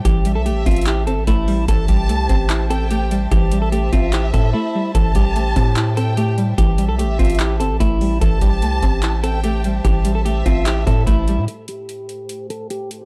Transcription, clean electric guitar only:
X:1
M:4/4
L:1/16
Q:1/4=147
K:Am
V:1 name="Clean electric guitar"
G3 A G2 F2 G2 A2 E4 | A2 G8 A2 G2 z2 | G3 A G2 F2 G2 A2 E4 | A2 G8 A2 G2 z2 |
G3 A G2 F2 G2 A2 E4 | A2 G8 A2 G2 z2 | G3 A G2 F2 G2 A2 E4 | A2 G8 A2 G2 z2 |]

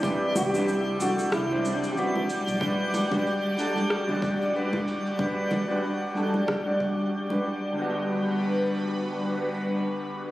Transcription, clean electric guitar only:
X:1
M:4/4
L:1/16
Q:"Swing 16ths" 1/4=93
K:G
V:1 name="Clean electric guitar"
[E,CDB]3 [E,CDB] z2 [E,CDA] z2 [E,CDc]3 [E,CDB] z3 | [G,DFB]3 [G,DFB] z2 [G,DFA] z2 [G,DFd]3 [G,DFB] z3 | [G,DFB]3 [G,DFB] z2 [G,DFA] z2 [G,DFd]3 z [G,DFB] z2 | [D,G,B,F]16 |]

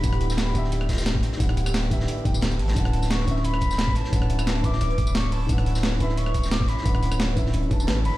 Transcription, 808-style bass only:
X:1
M:4/4
L:1/8
Q:1/4=176
K:D
V:1 name="808-style bass" clef=bass
D,,,3 D,,,4 z | D,,,3 D,,, z D,,,2 A,,, | D,,,3 D,,,4 z | D,,,3 D,,, D,,,4 |
D,,,3 D,,,4 z | D,,,3 D,,, D,,,2 A,,, F,,, |]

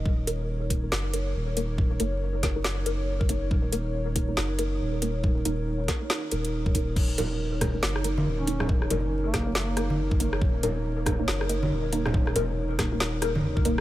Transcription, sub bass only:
X:1
M:4/4
L:1/8
Q:"Swing 16ths" 1/4=139
K:Ebm
V:1 name="Sub bass" clef=bass
E,,,4 G,,,2 E,,,2- | E,,, G,,,6 G,,, | E,,,4 G,,,2 E,,,2- | E,,, E,,,2 z2 E,,,3 |
E,,,4 G,,,2 E,,,2- | E,,, G,,,6 G,,, | E,,,4 G,,,2 E,,,2- | E,,, _F,,,2 E,,,4 E,,, |]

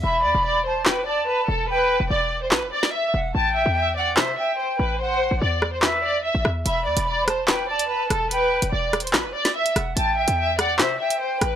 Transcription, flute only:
X:1
M:4/4
L:1/8
Q:1/4=145
K:Em
V:1 name="Flute"
b3 a g a3 | g2 z4 z f | g3 f e g3 | f2 z2 e2 z2 |
b3 a g a3 | g2 z4 z f | g3 f e g3 |]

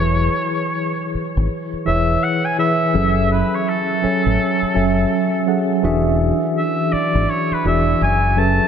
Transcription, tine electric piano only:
X:1
M:4/4
L:1/16
Q:"Swing 16ths" 1/4=83
K:F#m
V:1 name="Tine electric piano"
[E,EGBc]4 z6 [E,EGBc]3 z [E,EGBe]2 | [F,CGAe]4 z2 [F,CAcg]3 z [F,CAeg]3 z [F,CGAf]2 | [E,DFGe]6 z4 [E,DFGd]2 z2 [F,CGABe]2 |]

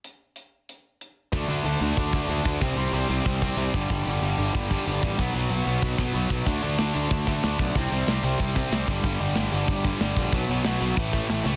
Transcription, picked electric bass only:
X:1
M:4/4
L:1/8
Q:1/4=187
K:D
V:1 name="Picked electric bass" clef=bass
z8 | D,, D,, D,, D,, D,,2 D,, D,, | =C,, C,, C,, C,, C,,2 C,, G,,, | G,,, G,,, G,,, G,,, G,,,2 G,,, A,,, |
B,,, B,,, B,,, B,,, B,,,2 B,,, B,,, | D,, D,, D,, D,, D,,2 D,, B,,, | =C,, C,, C,, C,, C,,2 C,, G,,, | G,,, G,,, G,,, G,,, G,,,2 G,,, _B,,, |
B,,, B,,, B,,, B,,, A,,,2 A,,, C,, |]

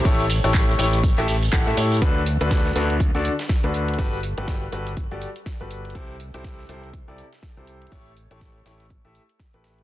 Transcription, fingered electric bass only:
X:1
M:4/4
L:1/16
Q:"Swing 16ths" 1/4=122
K:Amix
V:1 name="Fingered electric bass" clef=bass
A,,,3 A,,,3 A,,,3 A,,,3 z A,, A,,2 | D,,3 D,,3 D,,3 D,, z3 D,,3 | G,,,3 G,,,3 G,,,3 G,,, z3 G,,,3 | z3 =C,,3 C,,3 C,, z3 C,,3 |
z3 A,,,3 A,,,3 A,,, z3 A,,,3 |]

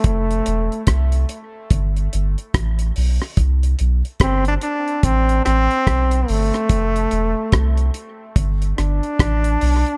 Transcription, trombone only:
X:1
M:4/4
L:1/16
Q:"Swing 16ths" 1/4=72
K:Flyd
V:1 name="Trombone"
A,4 z12 | z4 C D D2 C2 C4 A,2- | A,6 z4 D6 |]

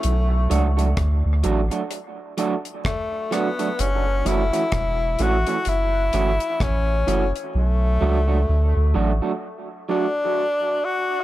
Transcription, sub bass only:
X:1
M:4/4
L:1/16
Q:"Swing 16ths" 1/4=64
K:Bm
V:1 name="Sub bass" clef=bass
B,,,2 C,,2 D,, D,, A,,, z8 z | F,,,2 F,,, z E,,,2 A,,, z F,,,2 G,,, z A,,,2 F,,, z | B,,,2 C,,2 D,, D,, A,,, z8 z |]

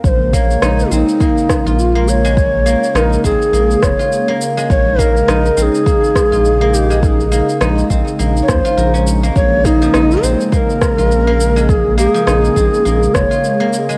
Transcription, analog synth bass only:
X:1
M:4/4
L:1/16
Q:"Swing 16ths" 1/4=103
K:Bbm
V:1 name="Analog synth bass" clef=bass
B,,,4 B,,, z B,,, z4 B,,,4- B,,,- | B,,,3 z B,,, z B,,, z B,,, z F,,, z4 z | B,,,4 B,,, z B,,, z4 B,,,4- B,,,- | B,,,3 z B,,, z B,,, z B,,, z E,, z B,,,4 |
B,,,4 B,,, z B,,, z4 B,,,4- B,,,- | B,,,3 z B,,, z B,,, z B,,, z F,,, z4 z |]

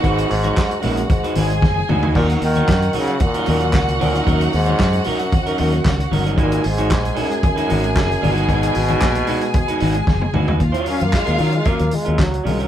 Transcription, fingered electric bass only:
X:1
M:4/4
L:1/16
Q:1/4=114
K:Ebm
V:1 name="Fingered electric bass" clef=bass
A,,,2 A,,,2 z2 B,,,2 z2 A,,,2 G,,,2 =D,,2 | E,,2 E,,2 G,,2 z4 E,,2 D,,2 =D,,2 | E,,2 E,,2 G,,2 z4 E,,2 D,,2 =G,,,2 | A,,,2 A,,,2 B,,,2 z4 A,,,2 G,,,2 =G,,,2 |
A,,,2 A,,,2 B,,,2 z4 A,,,2 G,,,2 =D,,2 | E,, z2 G,, z E,, E,2 z E,, z E,, D,,2 =C,,2 |]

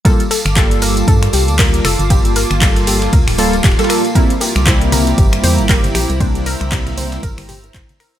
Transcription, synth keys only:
X:1
M:4/4
L:1/16
Q:"Swing 16ths" 1/4=117
K:Gdor
V:1 name="Synth keys"
[G,B,FA] z3 [G,B,FA]8 [G,B,FB]2 z2 | [G,B,FG]2 z2 [G,B,FA]6 [G,B,FA] z2 [G,B,FA]2 z | [G,B,CE] z3 [G,B,CE]8 [G,B,CG]2 z2 | [G,B,CD]2 z2 [G,B,CE]6 z6 |]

